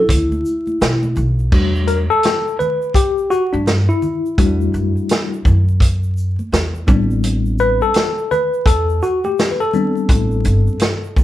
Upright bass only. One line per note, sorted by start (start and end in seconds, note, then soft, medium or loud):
0.09 0.42 D2 medium
0.81 1.14 B2 medium
1.17 1.49 B1 medium
1.52 2.06 E2 medium
3.53 3.86 G2 medium
4.38 4.71 E2 loud
4.74 4.94 F#2 medium
5.45 6.35 F#2 medium
6.52 6.85 E2 medium
6.88 7.78 A1 loud
8.66 8.99 E2 loud
10.09 10.42 A1 loud
10.45 10.66 G1 medium
11.17 11.24 A1 medium